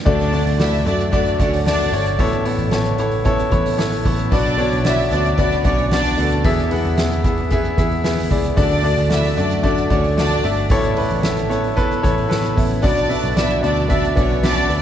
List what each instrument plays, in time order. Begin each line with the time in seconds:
0.05 picked electric bass D2, grand piano D3 A3 D4 F#4 D5, analog synth pad D3 A3 F#4, violin section D4 D5, kick, crash
0.20 snare, open hi-hat
0.32 grand piano A3 D4 F#4 D5, hi-hat pedal, open hi-hat
0.46 picked electric bass D2, hi-hat pedal, open hi-hat
0.59 grand piano A3 D4 F#4 D5, violin section E4 E5, snare, hi-hat pedal, open hi-hat
0.73 hi-hat pedal, open hi-hat
0.85 picked electric bass F#2, grand piano A3 D4 F#4 D5, violin section D4 D5, hi-hat pedal, open hi-hat
0.99 hi-hat pedal, open hi-hat
1.12 grand piano A3 D4 F#4 D5, violin section D4 D5, kick, hi-hat pedal, open hi-hat
1.26 hi-hat pedal, open hi-hat
1.39 picked electric bass D2, grand piano A3 D4 F#4 D5, violin section C#4 C#5, kick, hi-hat pedal, open hi-hat
1.53 hi-hat pedal, open hi-hat
1.65 grand piano A3 D4 F#4 D5, violin section D4 D5, snare, hi-hat pedal, open hi-hat
1.80 hi-hat pedal, open hi-hat
1.92 picked electric bass G1, grand piano A3 D4 F#4 C#5, hi-hat pedal, open hi-hat
2.06 hi-hat pedal, open hi-hat
2.19 picked electric bass A1, grand piano A2 B3 E4 A4 C#5, analog synth pad C#3 B3 A4, kick, hi-hat pedal, open hi-hat
2.32 hi-hat pedal
2.45 grand piano B3 E4 A4 C#5, hi-hat pedal, open hi-hat
2.59 picked electric bass A1, open hi-hat
2.71 grand piano B3 E4 A4 C#5, snare, hi-hat pedal, open hi-hat
2.85 hi-hat pedal
2.98 grand piano B3 E4 A4 C#5, hi-hat pedal, open hi-hat
3.11 open hi-hat
3.24 grand piano B3 E4 A4 C#5, kick, hi-hat pedal, open hi-hat
3.38 hi-hat pedal, open hi-hat
3.50 picked electric bass A1, grand piano B3 E4 A4 C#5, kick, hi-hat pedal, open hi-hat
3.65 hi-hat pedal, open hi-hat
3.77 grand piano B3 E4 A4 C#5, snare, hi-hat pedal, open hi-hat
3.92 hi-hat pedal, open hi-hat
4.05 picked electric bass A1, grand piano B3 E4 A4 C#5, kick, hi-hat pedal, open hi-hat
4.18 hi-hat pedal, open hi-hat
4.32 picked electric bass B1, grand piano B2 B3 D4 F#4 D5, analog synth pad D3 F#4, violin section D4 D5, kick, hi-hat pedal, open hi-hat
4.45 hi-hat pedal
4.57 grand piano B3 D4 F#4 C#5, hi-hat pedal, open hi-hat
4.72 picked electric bass B1, open hi-hat
4.85 grand piano B3 D4 F#4 D5, violin section E4 E5, snare, hi-hat pedal, open hi-hat
4.99 hi-hat pedal, open hi-hat
5.11 picked electric bass D2, grand piano B3 D4 F#4 D5, violin section D4 D5, hi-hat pedal, open hi-hat
5.25 hi-hat pedal, open hi-hat
5.38 grand piano B3 D4 F#4 D5, violin section D4 D5, kick, hi-hat pedal, open hi-hat
5.52 hi-hat pedal
5.64 picked electric bass B1, grand piano B3 D4 F#4 D5, violin section C#4 C#5, kick, hi-hat pedal, open hi-hat
5.78 open hi-hat
5.91 grand piano B3 D4 F#4 D5, violin section D4 D5, snare, hi-hat pedal, open hi-hat
6.04 hi-hat pedal, open hi-hat
6.18 picked electric bass D2, grand piano B3 D4 F#4 A4, hi-hat pedal, open hi-hat
6.31 hi-hat pedal, open hi-hat
6.43 picked electric bass E2, analog synth pad E3 B3 G#4, grand piano E3 B3 E4 G#4 E5, kick, hi-hat pedal, open hi-hat
6.58 snare, hi-hat pedal
6.71 grand piano B3 E4 G#4 F#5, hi-hat pedal, open hi-hat
6.85 picked electric bass E2, open hi-hat
6.96 grand piano B3 E4 G#4 E5, snare, hi-hat pedal, open hi-hat
7.11 hi-hat pedal
7.24 grand piano B3 E4 G#4 E5, kick, hi-hat pedal, open hi-hat
7.38 open hi-hat
7.50 grand piano B3 E4 G#4 E5, kick, hi-hat pedal, open hi-hat
7.64 hi-hat pedal
7.77 picked electric bass E2, grand piano B3 E4 G#4 E5, kick, hi-hat pedal, open hi-hat
7.92 open hi-hat
8.04 grand piano B3 E4 G#4 E5, snare, hi-hat pedal, open hi-hat
8.18 hi-hat pedal, open hi-hat
8.30 picked electric bass C#2, grand piano B3 E4 G#4 D5, kick, hi-hat pedal, open hi-hat
8.44 hi-hat pedal, open hi-hat
8.56 picked electric bass D2, grand piano D3 A3 D4 F#4 D5, analog synth pad D3 A3 F#4, violin section D4 D5, kick, hi-hat pedal, open hi-hat
8.71 hi-hat pedal, open hi-hat
8.82 grand piano A3 D4 F#4 D5, hi-hat pedal, open hi-hat
8.98 picked electric bass D2, hi-hat pedal, open hi-hat
9.09 grand piano A3 D4 F#4 D5, violin section E4 E5, snare, hi-hat pedal, open hi-hat
9.24 hi-hat pedal, open hi-hat
9.37 picked electric bass F#2, grand piano A3 D4 F#4 D5, violin section D4 D5, hi-hat pedal, open hi-hat
9.50 hi-hat pedal, open hi-hat
9.63 grand piano A3 D4 F#4 D5, violin section D4 D5, kick, hi-hat pedal, open hi-hat
9.77 hi-hat pedal
9.90 picked electric bass D2, grand piano A3 D4 F#4 D5, violin section C#4 C#5, kick, hi-hat pedal, open hi-hat
10.04 open hi-hat
10.17 grand piano A3 D4 F#4 D5, violin section D4 D5, snare, hi-hat pedal, open hi-hat
10.31 hi-hat pedal
10.44 picked electric bass G1, grand piano A3 D4 F#4 E5, hi-hat pedal, open hi-hat
10.57 open hi-hat
10.70 picked electric bass A1, grand piano A2 B3 E4 A4 C#5, analog synth pad C#3 B3 A4, kick, hi-hat pedal, open hi-hat
10.83 hi-hat pedal
10.96 grand piano B3 E4 A4 B4, hi-hat pedal, open hi-hat
11.10 picked electric bass A1, open hi-hat
11.23 grand piano B3 E4 A4 E5, snare, hi-hat pedal, open hi-hat
11.38 hi-hat pedal
11.49 grand piano B3 E4 A4 C#5, hi-hat pedal, open hi-hat
11.64 open hi-hat
11.76 grand piano B3 E4 A4 B4, kick, hi-hat pedal, open hi-hat
11.91 hi-hat pedal
12.02 picked electric bass A1, grand piano B3 E4 A4 C#5, kick, hi-hat pedal, open hi-hat
12.18 open hi-hat
12.28 grand piano B3 E4 A4 B4, snare, hi-hat pedal, open hi-hat
12.45 hi-hat pedal
12.55 picked electric bass A1, grand piano B3 E4 A4 E5, kick, hi-hat pedal, open hi-hat
12.71 open hi-hat
12.82 picked electric bass B1, grand piano B2 B3 D4 F#4 D5, analog synth pad D3 F#4, violin section D4 D5, kick, hi-hat pedal, open hi-hat
12.97 hi-hat pedal
13.08 grand piano B3 D4 F#4 E5, hi-hat pedal, open hi-hat
13.24 picked electric bass B1, open hi-hat
13.36 grand piano B3 D4 F#4 D5, violin section E4 E5, snare, hi-hat pedal, open hi-hat
13.50 hi-hat pedal
13.62 picked electric bass D2, grand piano B3 D4 F#4 D5, violin section D4 D5, hi-hat pedal, open hi-hat
13.77 open hi-hat
13.88 grand piano B3 D4 F#4 E5, violin section D4 D5, kick, hi-hat pedal, open hi-hat
14.04 hi-hat pedal
14.15 picked electric bass B1, grand piano B3 D4 F#4 D5, violin section C#4 C#5, kick, hi-hat pedal, open hi-hat
14.30 open hi-hat
14.43 grand piano B3 D4 F#4 E5, violin section D4 D5, snare, hi-hat pedal, open hi-hat
14.56 hi-hat pedal
14.69 picked electric bass D2, grand piano B3 D4 F#4 D5, hi-hat pedal, open hi-hat